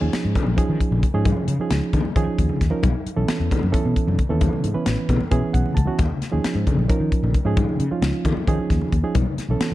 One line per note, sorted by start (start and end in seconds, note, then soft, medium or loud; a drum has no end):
0.00 0.10 D#2 medium
0.00 0.49 F3 medium
0.00 0.49 C#4 medium
0.00 0.49 D#4 medium
0.00 0.50 G#4 medium
0.13 snare loud
0.13 closed hi-hat medium
0.25 0.33 G#2 medium
0.35 kick medium
0.35 closed hi-hat medium
0.35 low conga medium
0.46 0.55 A#1 medium
0.46 high conga medium
0.57 1.06 F3 medium
0.57 1.06 C#4 medium
0.57 1.06 D#4 medium
0.57 1.06 G#4 medium
0.57 kick medium
0.57 closed hi-hat medium
0.69 0.78 D#3 medium
0.69 low conga soft
0.80 kick medium
0.80 closed hi-hat medium
0.91 1.00 A#1 medium
0.91 low conga medium
1.03 muted fretless electric bass stroke soft
1.03 kick medium
1.03 closed hi-hat medium
1.14 1.31 G#2 medium
1.14 1.53 F3 medium
1.14 1.53 C#4 medium
1.14 1.53 D#4 medium
1.14 1.53 G#4 medium
1.25 kick loud
1.25 closed hi-hat medium
1.25 high conga medium
1.36 muted fretless electric bass stroke soft
1.36 low conga medium
1.48 1.56 C#3 medium
1.48 closed hi-hat medium
1.59 2.08 F3 medium
1.59 2.08 C#4 medium
1.59 2.08 D#4 medium
1.59 2.08 G#4 medium
1.59 muted fretless electric bass stroke soft
1.70 1.79 C#2 medium
1.70 snare loud
1.70 closed hi-hat medium
1.93 2.02 D#3 medium
1.93 kick medium
1.93 closed hi-hat medium
1.93 low conga medium
2.04 muted fretless electric bass stroke soft
2.04 high conga medium
2.16 2.24 D#3 medium
2.16 2.64 F3 medium
2.16 2.64 C#4 medium
2.16 2.64 D#4 medium
2.16 2.64 G#4 loud
2.16 kick loud
2.16 closed hi-hat medium
2.27 muted fretless electric bass stroke soft
2.27 low conga soft
2.39 2.47 D#2 medium
2.39 kick medium
2.39 closed hi-hat medium
2.49 low conga medium
2.61 2.70 D#2 medium
2.61 kick medium
2.61 snare soft
2.61 closed hi-hat medium
2.71 2.82 F3 medium
2.71 2.83 C#4 medium
2.71 2.83 D#4 medium
2.71 2.83 A#4 medium
2.83 2.92 B1 medium
2.83 kick loud
2.83 closed hi-hat medium
2.83 high conga medium
3.06 muted fretless electric bass stroke soft
3.06 closed hi-hat medium
3.16 3.26 B1 medium
3.16 3.65 E3 medium
3.16 3.65 B3 medium
3.16 3.65 C#4 medium
3.16 3.65 A4 medium
3.28 snare loud
3.28 closed hi-hat medium
3.40 3.48 E2 medium
3.51 muted fretless electric bass stroke soft
3.51 kick medium
3.51 closed hi-hat medium
3.51 low conga medium
3.62 3.71 F#2 medium
3.62 high conga medium
3.72 4.21 E3 medium
3.72 4.21 B3 medium
3.72 4.21 C#4 medium
3.72 4.21 A4 medium
3.72 kick loud
3.72 closed hi-hat medium
3.85 3.94 B2 medium
3.85 low conga soft
3.96 kick medium
3.96 closed hi-hat medium
4.07 4.16 F#2 medium
4.07 low conga medium
4.19 muted fretless electric bass stroke soft
4.19 kick medium
4.19 closed hi-hat medium
4.29 4.47 D#2 medium
4.29 4.68 E3 medium
4.29 4.68 B3 medium
4.29 4.69 C#4 medium
4.29 4.69 A4 medium
4.41 kick loud
4.41 closed hi-hat medium
4.41 high conga medium
4.53 muted fretless electric bass stroke soft
4.53 low conga medium
4.64 4.72 G#2 medium
4.64 closed hi-hat medium
4.74 5.23 E3 medium
4.74 5.23 B3 medium
4.74 5.23 C#4 medium
4.74 5.23 B4 medium
4.74 muted fretless electric bass stroke soft
4.74 low conga soft
4.86 4.95 A1 medium
4.86 snare loud
4.86 closed hi-hat medium
5.09 5.17 B2 medium
5.09 kick medium
5.09 closed hi-hat medium
5.09 low conga medium
5.20 muted fretless electric bass stroke soft
5.20 high conga medium
5.31 5.40 B2 medium
5.31 5.79 E3 medium
5.31 5.80 B3 medium
5.31 5.80 C#4 medium
5.31 5.80 G#4 loud
5.31 kick loud
5.31 closed hi-hat medium
5.42 muted fretless electric bass stroke soft
5.53 5.63 B1 medium
5.53 5.75 F#5 medium
5.53 kick medium
5.53 closed hi-hat medium
5.66 low conga medium
5.75 5.85 C#2 medium
5.75 5.96 A5 medium
5.75 kick medium
5.75 closed hi-hat medium
5.75 low conga soft
5.86 5.98 E3 medium
5.86 5.98 B3 medium
5.86 5.99 C#4 medium
5.86 5.99 F#4 medium
5.99 6.08 D#2 medium
5.99 kick loud
5.99 closed hi-hat medium
5.99 high conga medium
6.10 low conga medium
6.22 muted fretless electric bass stroke soft
6.22 snare soft
6.22 closed hi-hat medium
6.31 6.42 D#2 medium
6.31 6.80 F3 medium
6.31 6.81 C#4 medium
6.31 6.81 D#4 medium
6.31 6.81 G#4 medium
6.44 muted fretless electric bass stroke soft
6.44 snare loud
6.44 closed hi-hat medium
6.55 6.64 G#2 medium
6.67 kick medium
6.67 closed hi-hat medium
6.67 low conga medium
6.77 6.86 A#1 medium
6.77 high conga medium
6.88 7.37 F3 medium
6.88 7.37 C#4 medium
6.88 7.37 D#4 medium
6.88 7.38 A#4 medium
6.88 kick loud
6.88 closed hi-hat medium
7.00 7.09 D#3 medium
7.00 low conga soft
7.12 kick medium
7.12 closed hi-hat medium
7.23 7.31 A#1 medium
7.23 low conga medium
7.34 muted fretless electric bass stroke soft
7.34 kick medium
7.34 closed hi-hat medium
7.45 7.62 G#2 medium
7.45 7.84 F3 medium
7.45 7.84 C#4 medium
7.45 7.84 D#4 medium
7.45 7.85 G#4 medium
7.57 kick loud
7.57 closed hi-hat medium
7.57 high conga medium
7.68 muted fretless electric bass stroke soft
7.68 low conga medium
7.79 7.88 C#3 medium
7.79 closed hi-hat medium
7.91 8.39 F3 medium
7.91 8.39 C#4 medium
7.91 8.39 D#4 medium
7.91 8.39 F4 medium
7.91 muted fretless electric bass stroke soft
8.02 8.10 C#2 medium
8.02 snare loud
8.02 closed hi-hat medium
8.25 8.33 D#3 medium
8.25 kick medium
8.25 closed hi-hat medium
8.25 low conga medium
8.36 muted fretless electric bass stroke soft
8.36 high conga medium
8.47 8.56 D#3 medium
8.47 8.96 F3 medium
8.47 8.96 C#4 medium
8.47 8.96 D#4 medium
8.47 8.96 G#4 loud
8.47 kick loud
8.47 closed hi-hat medium
8.59 muted fretless electric bass stroke soft
8.59 low conga soft
8.70 8.79 D#2 medium
8.70 kick medium
8.70 snare soft
8.70 closed hi-hat medium
8.81 low conga medium
8.92 9.01 D#2 medium
8.92 kick medium
8.92 closed hi-hat medium
9.03 9.15 F3 medium
9.03 9.15 C#4 medium
9.03 9.15 D#4 medium
9.03 9.15 G#4 medium
9.15 9.24 B1 medium
9.15 kick loud
9.15 closed hi-hat medium
9.15 high conga medium
9.26 low conga medium
9.38 muted fretless electric bass stroke soft
9.38 snare soft
9.38 closed hi-hat medium
9.48 9.57 B1 medium
9.48 9.74 E3 medium
9.48 9.74 B3 medium
9.48 9.74 C#4 medium
9.48 9.74 A4 medium
9.61 snare loud
9.61 closed hi-hat medium